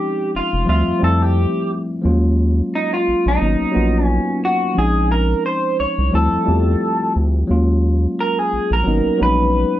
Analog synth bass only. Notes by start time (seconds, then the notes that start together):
0.35 F1
0.53 F1
0.69 D2
0.88 F2
1.03 F2
2.05 D#2
3.08 A#1
3.26 A#1
3.42 G#1
3.61 A#1
3.76 A#1
4.78 A#1
5.80 C2
5.98 C2
6.14 D2
6.32 E2
6.48 E2
7.16 D2
7.50 D#2
8.53 A#1
8.71 A#1
8.87 G#1
9.05 A#1
9.21 A#1